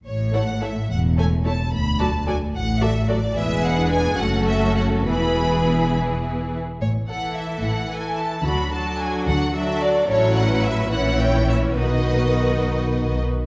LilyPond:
<<
  \new Staff \with { instrumentName = "Violin section" } { \time 6/8 \key a \major \tempo 4. = 72 cis''8 fis''8 e''8 fis''8 gis''8 a''8 | b''8 a''8 gis''8 fis''8 e''8 d''8 | e''8 fis''8 gis''8 fis''8 e''8 fis''8 | b''4. r4. |
cis''8 fis''8 e''8 fis''8 gis''8 a''8 | b''8 a''8 gis''8 fis''8 e''8 d''8 | \key b \mixolydian cis''8 fis''8 e''8 fis''8 g''8 e''8 | dis''2~ dis''8 r8 | }
  \new Staff \with { instrumentName = "Violin section" } { \time 6/8 \key a \major << { r8 cis''8 cis''8 r8 cis''8 cis''8 | r8 d''8 d''8 r8 d''8 d''8 | b'4. a'4. | b'2~ b'8. r16 |
r8 a'4. a'4 | a'8 a'4. a'4 | \key b \mixolydian a'8. b'8. cis''4. | b'2~ b'8. r16 | } \\ { r8 a'8 a'8 r8 a'8 a'8 | r8 a'8 a'8 r8 a'8 a'8 | gis'4. fis'4. | gis'2~ gis'8 r8 |
r8 a'4. a'4 | fis'8 fis'4. fis'4 | e'4. e'4. | fis'2~ fis'8 r8 | } >> }
  \new Staff \with { instrumentName = "Viola section" } { \time 6/8 \key a \major << { r8 e'8 e'8 r8 e'8 e'8 | r8 fis'8 fis'8 r8 fis'8 fis'8 | e'8. d'8. cis'4. | e'2~ e'8. r16 |
r8 e'4. e'4 | d'8 d'4. d'4 | \key b \mixolydian cis'4. cis'4. | dis'2~ dis'8. r16 | } \\ { r8 a8 a8 r8 a8 a8 | r8 fis8 fis8 r8 fis8 fis8 | gis4. a4. | e2~ e8 r8 |
r8 e4. e4 | fis8 fis4. fis4 | fis4. e4. | dis2~ dis8 r8 | } >> }
  \new Staff \with { instrumentName = "Cello section" } { \clef bass \time 6/8 \key a \major a,4. e,4. | d,4. a,4. | e,4. fis,4. | e,2~ e,8 r8 |
a,4. a,4. | d4. d4. | \key b \mixolydian a,4. ais,4. | b,2~ b,8 r8 | }
  \new Staff \with { instrumentName = "Double bass section" } { \clef bass \time 6/8 \key a \major a,,4. e,,4. | d,4. a,,4. | e,,4. fis,,4. | e,,2~ e,,8 r8 |
a,,4. a,,4. | d,4. d,4. | \key b \mixolydian a,,4. ais,,4. | b,,2~ b,,8 r8 | }
>>